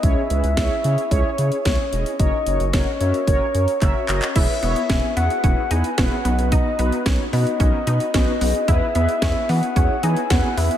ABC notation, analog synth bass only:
X:1
M:4/4
L:1/16
Q:1/4=111
K:Elyd
V:1 name="Analog synth bass" clef=bass
C,, z C,, C,, C,, z C, z C,, z C, z C,, z E,,, z | F,,, z F,,, F,,, F,,, z F,, z F,,, z F,, z F,,, z F,,, z | E,,, z E,,, z E,,, z E,, z E,,, z E,, z E,,, z B,,,2- | B,,, z B,,, z B,,, z B,, z B,,, z B,, z B,,, z B,,, z |
E,, z E,, z E,, z E, z E,, z E, z E,, z E,, z |]